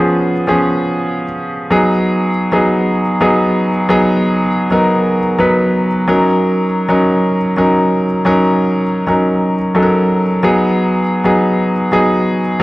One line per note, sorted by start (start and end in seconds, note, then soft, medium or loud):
0.00 0.47 F3 medium
0.00 0.48 B3 medium
0.00 0.48 C#4 medium
0.00 0.49 G#4 medium
0.47 1.24 F3 medium
0.47 1.24 B3 medium
0.47 1.24 C#4 medium
0.47 1.25 G#4 loud
1.70 2.28 F#3 medium
1.70 2.28 B3 medium
1.70 2.28 D#4 medium
1.70 2.28 G#4 loud
2.52 3.00 F#3 medium
2.52 3.00 B3 medium
2.52 3.00 D#4 medium
2.52 3.01 G#4 medium
3.21 3.69 F#3 medium
3.21 3.69 B3 medium
3.21 3.69 D#4 medium
3.21 3.69 G#4 medium
3.89 4.46 F#3 medium
3.89 4.47 B3 medium
3.89 4.47 D#4 medium
3.89 4.47 G#4 loud
4.71 5.19 F#3 medium
4.71 5.19 B3 medium
4.71 5.19 D#4 medium
4.71 5.19 A#4 loud
5.38 5.87 F#3 medium
5.38 5.87 B3 medium
5.38 5.87 D#4 medium
5.38 5.87 B4 medium
6.07 6.65 F#3 medium
6.07 6.65 C#4 medium
6.07 6.65 D#4 medium
6.07 6.65 A#4 medium
6.88 7.37 F#3 medium
6.88 7.37 C#4 medium
6.88 7.37 D#4 medium
6.88 7.37 A#4 medium
7.57 8.05 F#3 medium
7.57 8.05 C#4 medium
7.57 8.05 D#4 medium
7.57 8.05 A#4 medium
8.25 8.82 F#3 medium
8.25 8.82 C#4 medium
8.25 8.83 D#4 medium
8.25 8.83 A#4 loud
9.07 9.55 F#3 medium
9.07 9.55 C#4 medium
9.07 9.55 D#4 medium
9.07 9.55 A#4 medium
9.75 10.22 F#3 medium
9.75 10.23 C#4 medium
9.75 10.23 D#4 medium
9.75 9.82 A4 medium
9.83 10.26 A#4 medium
10.43 11.00 F#3 medium
10.43 11.00 B3 medium
10.43 11.00 D#4 medium
10.43 11.01 G#4 medium
11.24 11.72 F#3 medium
11.24 11.72 B3 medium
11.24 11.72 D#4 medium
11.24 11.72 G#4 medium
11.92 12.39 F#3 medium
11.92 12.40 B3 medium
11.92 12.40 D#4 medium
11.92 12.40 G#4 loud
12.60 12.63 F#3 loud